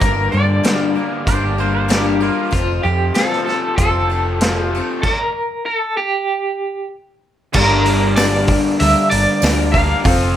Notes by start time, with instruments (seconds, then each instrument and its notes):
Already playing: overdriven electric guitar G3 A#3 D4
0.00 fingered electric bass G1, twelve-string acoustic guitar G2 D3 G3 A#3 D4 A#4, clean electric guitar A#4, kick, closed hi-hat
0.32 fingered electric bass G2, overdriven electric guitar D3, twelve-string acoustic guitar G3 A#3 D4 A#4, clean electric guitar D5
0.64 twelve-string acoustic guitar G2 D3 G3 A#3 D4 A#4, snare, closed hi-hat
0.95 twelve-string acoustic guitar G3 A#3 D4 A#4
1.27 fingered electric bass G1, twelve-string acoustic guitar G3 A#3 D4 A#4, pedal steel guitar C5, kick, closed hi-hat
1.44 pedal steel guitar G4
1.58 twelve-string acoustic guitar G3 A#3 D4 A#4, pedal steel guitar C5
1.75 pedal steel guitar C5
1.88 twelve-string acoustic guitar G2 D3 G3 A#3 D4 A#4, pedal steel guitar G4, snare, closed hi-hat
2.21 twelve-string acoustic guitar G3 A#3 D4 A#4, pedal steel guitar F4
2.51 fingered electric bass F1, overdriven electric guitar F2, twelve-string acoustic guitar F3 C4 F4 A4, clean electric guitar F4, kick, closed hi-hat
2.83 fingered electric bass F2, overdriven electric guitar C3, twelve-string acoustic guitar C4 F4 A4, clean electric guitar G4
3.14 twelve-string acoustic guitar F3 C4 F4 A4, clean electric guitar A4, snare, closed hi-hat
3.32 snare
3.45 overdriven electric guitar A3, twelve-string acoustic guitar F4 A4, clean electric guitar A4, snare
3.50 twelve-string acoustic guitar C4
3.77 fingered electric bass F1, twelve-string acoustic guitar F3 C4 F4, clean electric guitar A4, kick, closed hi-hat
3.81 twelve-string acoustic guitar A4
4.09 overdriven electric guitar A3, twelve-string acoustic guitar F4 A4
4.13 twelve-string acoustic guitar C4
4.41 twelve-string acoustic guitar F3 C4 F4 A4, snare, closed hi-hat
4.66 clean electric guitar G4
4.70 overdriven electric guitar A3
4.75 twelve-string acoustic guitar C4 F4 A4
5.02 clean electric guitar A4, kick, crash
5.13 clean electric guitar A#4
5.66 clean electric guitar A4
5.97 clean electric guitar G4
7.53 fingered electric bass G1, twelve-string acoustic guitar G2 D3 G3 A#3 D4 A#4, reed electric piano D4 G4 A#4 D5, clean electric guitar A#4, kick, crash
7.85 twelve-string acoustic guitar G3 A#3 D4 A#4, open hi-hat
8.16 twelve-string acoustic guitar G2 D3 G3 A#3 D4 A#4, clean electric guitar D5, snare, open hi-hat, tambourine
8.47 twelve-string acoustic guitar G3 A#3 D4 A#4, kick, open hi-hat
8.80 fingered electric bass D2, twelve-string acoustic guitar G3 A#3 D4 A#4, clean electric guitar E5, open hi-hat
9.10 fingered electric bass G1, twelve-string acoustic guitar D4 A#4, clean electric guitar D5, open hi-hat
9.15 twelve-string acoustic guitar G3 A#3
9.42 fingered electric bass D2, twelve-string acoustic guitar G2 D3 G3 A#3 D4 A#4, snare, open hi-hat, tambourine
9.72 overdriven electric guitar D3, twelve-string acoustic guitar G3 A#3 D4 A#4, clean electric guitar F5, kick, open hi-hat
9.77 overdriven electric guitar G2
10.04 fingered electric bass F1, twelve-string acoustic guitar F3 C4 F4 A4, reed electric piano C4 F4 A4 C5, kick, open hi-hat